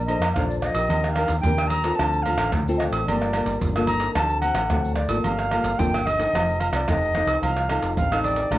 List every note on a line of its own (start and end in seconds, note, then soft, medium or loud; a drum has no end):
0.00 0.15 A#1 loud
0.00 0.33 A#3 medium
0.06 0.24 D4 medium
0.06 0.24 A4 medium
0.06 0.25 C5 medium
0.06 0.32 D#5 medium
0.06 pandeiro medium
0.06 low agogo medium
0.19 0.32 F2 medium
0.19 pandeiro medium
0.19 tamborim medium
0.19 low agogo medium
0.19 shaker medium
0.32 0.70 A#1 medium
0.32 0.46 F5 medium
0.32 pandeiro medium
0.32 tamborim medium
0.32 shaker medium
0.32 surdo loud
0.36 0.87 F3 medium
0.36 0.72 D4 medium
0.36 0.73 A4 medium
0.36 0.73 C5 medium
0.48 0.59 D5 medium
0.48 pandeiro soft
0.48 shaker soft
0.60 1.11 D#5 medium
0.60 pandeiro medium
0.60 tamborim medium
0.74 0.87 A#1 medium
0.74 1.13 G4 medium
0.74 1.13 A#4 medium
0.74 pandeiro medium
0.74 high agogo medium
0.74 shaker medium
0.89 1.24 D#2 medium
0.89 1.43 D#3 medium
0.89 pandeiro medium
0.89 low agogo medium
0.89 shaker medium
0.89 surdo medium
1.04 pandeiro soft
1.04 tamborim medium
1.04 shaker soft
1.12 1.39 F5 loud
1.16 1.33 D4 soft
1.16 1.33 G4 medium
1.16 1.33 A#4 medium
1.16 pandeiro medium
1.16 tamborim medium
1.16 low agogo medium
1.28 1.41 D#2 loud
1.28 pandeiro medium
1.28 shaker medium
1.40 1.69 G5 loud
1.40 pandeiro medium
1.40 shaker medium
1.40 surdo loud
1.44 1.91 D#2 medium
1.44 1.96 A#2 medium
1.44 1.81 D4 medium
1.44 1.82 G4 medium
1.44 1.82 A#4 medium
1.58 pandeiro soft
1.58 tamborim medium
1.58 high agogo medium
1.58 shaker soft
1.68 1.97 A#5 loud
1.68 pandeiro medium
1.68 high agogo loud
1.68 shaker medium
1.84 2.21 C4 medium
1.84 2.21 F4 medium
1.84 2.21 A4 medium
1.84 pandeiro medium
1.84 shaker medium
1.95 2.34 D2 medium
1.95 2.24 A5 loud
1.95 pandeiro medium
1.95 tamborim medium
1.95 low agogo medium
1.95 shaker medium
1.95 surdo medium
2.00 2.51 D3 medium
2.14 pandeiro soft
2.14 shaker soft
2.23 2.62 C4 medium
2.23 2.53 F5 medium
2.23 pandeiro medium
2.23 low agogo medium
2.23 surdo medium
2.27 2.63 F4 medium
2.27 2.63 A4 medium
2.37 2.50 A1 medium
2.37 pandeiro medium
2.37 tamborim medium
2.37 low agogo medium
2.37 shaker loud
2.52 2.87 D2 medium
2.52 3.05 A2 medium
2.52 pandeiro medium
2.52 tamborim medium
2.52 shaker medium
2.52 surdo loud
2.68 3.04 C4 medium
2.68 3.04 F4 medium
2.68 3.04 A4 medium
2.68 pandeiro soft
2.68 shaker soft
2.77 2.84 D#5 medium
2.77 pandeiro medium
2.77 tamborim medium
2.91 3.04 A1 medium
2.91 pandeiro medium
2.91 high agogo medium
2.91 shaker medium
3.06 3.41 G1 loud
3.06 3.60 G3 medium
3.06 3.31 A#3 medium
3.06 3.31 F4 medium
3.06 3.31 A4 medium
3.06 3.58 D5 medium
3.06 pandeiro medium
3.06 low agogo medium
3.06 shaker medium
3.06 surdo soft
3.22 pandeiro soft
3.22 tamborim medium
3.22 shaker soft
3.33 3.72 A#3 medium
3.33 3.72 F4 medium
3.33 3.72 A4 medium
3.33 pandeiro medium
3.33 tamborim medium
3.33 low agogo medium
3.45 3.58 G1 medium
3.45 pandeiro medium
3.45 shaker medium
3.61 4.08 G1 loud
3.61 4.14 D3 medium
3.61 pandeiro medium
3.61 shaker medium
3.61 surdo loud
3.76 4.12 A#3 medium
3.76 4.12 F4 medium
3.76 4.13 A4 medium
3.76 pandeiro soft
3.76 tamborim medium
3.76 high agogo medium
3.76 shaker soft
3.87 4.13 A#5 loud
3.87 pandeiro medium
3.87 high agogo medium
3.87 shaker medium
4.00 pandeiro medium
4.00 shaker medium
4.15 4.50 D2 loud
4.15 4.68 D3 medium
4.15 4.40 C4 medium
4.15 4.39 F#4 medium
4.15 4.40 A4 medium
4.15 4.40 A5 loud
4.15 pandeiro medium
4.15 tamborim medium
4.15 low agogo medium
4.15 shaker medium
4.15 surdo medium
4.30 pandeiro soft
4.30 shaker soft
4.41 4.59 C4 medium
4.41 4.60 F#4 medium
4.41 4.60 A4 medium
4.41 4.93 F#5 loud
4.41 pandeiro medium
4.41 low agogo medium
4.41 shaker medium
4.54 4.67 A1 medium
4.54 pandeiro medium
4.54 tamborim medium
4.54 low agogo loud
4.54 shaker loud
4.70 5.05 D2 medium
4.70 5.22 A2 medium
4.70 4.96 C4 medium
4.70 4.96 F#4 medium
4.70 4.96 A4 medium
4.70 pandeiro medium
4.70 tamborim medium
4.70 shaker medium
4.70 surdo medium
4.85 pandeiro soft
4.85 shaker soft
4.95 5.21 D5 medium
4.95 pandeiro medium
4.95 tamborim medium
4.95 shaker medium
5.08 5.21 G#1 medium
5.08 5.47 A#3 medium
5.08 5.47 F4 medium
5.08 5.47 A4 medium
5.08 pandeiro medium
5.08 high agogo medium
5.08 shaker medium
5.22 5.59 G1 medium
5.22 5.77 G3 medium
5.22 5.80 F5 medium
5.22 pandeiro medium
5.22 low agogo medium
5.22 shaker medium
5.22 surdo medium
5.39 pandeiro soft
5.39 tamborim medium
5.39 shaker soft
5.51 5.75 A#3 soft
5.51 5.75 F4 medium
5.51 5.75 A4 medium
5.51 pandeiro medium
5.51 tamborim medium
5.51 low agogo medium
5.63 5.76 G1 medium
5.63 pandeiro medium
5.63 shaker medium
5.79 6.25 G1 medium
5.79 6.31 D3 medium
5.79 6.05 A#3 medium
5.79 6.05 F4 medium
5.79 6.05 A4 medium
5.79 6.08 G5 loud
5.79 pandeiro medium
5.79 shaker medium
5.79 surdo loud
5.94 pandeiro soft
5.94 tamborim medium
5.94 high agogo medium
5.94 shaker soft
6.06 6.61 D#5 loud
6.06 pandeiro medium
6.06 high agogo medium
6.06 shaker medium
6.18 6.56 C4 medium
6.18 6.56 D#4 medium
6.18 6.56 A4 medium
6.18 pandeiro medium
6.18 shaker medium
6.33 6.68 F1 loud
6.33 6.86 F3 medium
6.33 pandeiro medium
6.33 tamborim medium
6.33 low agogo medium
6.33 shaker medium
6.33 surdo medium
6.49 pandeiro soft
6.49 shaker soft
6.60 6.73 F5 medium
6.60 pandeiro medium
6.60 low agogo medium
6.72 6.85 C2 medium
6.72 6.90 D5 medium
6.72 pandeiro medium
6.72 tamborim medium
6.72 low agogo medium
6.72 shaker medium
6.88 7.23 F1 medium
6.88 7.40 C3 medium
6.88 7.11 C4 medium
6.88 7.12 D#4 medium
6.88 7.12 A4 medium
6.88 7.41 D#5 loud
6.88 pandeiro medium
6.88 tamborim medium
6.88 shaker medium
6.88 surdo loud
7.03 pandeiro soft
7.03 shaker soft
7.15 7.51 C4 medium
7.15 7.51 D#4 medium
7.15 7.51 A4 medium
7.15 pandeiro medium
7.15 tamborim medium
7.27 7.39 C2 medium
7.27 pandeiro medium
7.27 high agogo medium
7.27 shaker medium
7.41 7.77 C2 loud
7.41 7.95 F3 medium
7.41 7.93 F5 medium
7.41 pandeiro medium
7.41 low agogo medium
7.41 shaker medium
7.41 surdo medium
7.57 pandeiro soft
7.57 tamborim medium
7.57 shaker soft
7.69 8.06 C4 soft
7.69 8.07 D#4 medium
7.69 8.06 A4 medium
7.69 pandeiro medium
7.69 tamborim medium
7.69 low agogo medium
7.82 7.94 F1 medium
7.82 pandeiro medium
7.82 shaker medium
7.96 8.43 A1 medium
7.96 8.49 C3 medium
7.96 8.22 F5 loud
7.96 pandeiro medium
7.96 shaker medium
7.96 surdo loud
8.12 8.48 C4 medium
8.12 8.48 D#4 medium
8.12 8.48 A4 medium
8.12 pandeiro soft
8.12 tamborim medium
8.12 high agogo medium
8.12 shaker soft
8.23 8.58 D5 medium
8.23 pandeiro medium
8.23 high agogo medium
8.36 pandeiro medium
8.36 shaker medium
8.51 8.58 A#1 loud
8.51 8.58 A#2 medium
8.51 8.58 A3 medium
8.51 8.58 D4 medium
8.51 8.58 F4 medium
8.51 pandeiro medium
8.51 tamborim medium
8.51 low agogo medium
8.51 shaker medium
8.51 surdo medium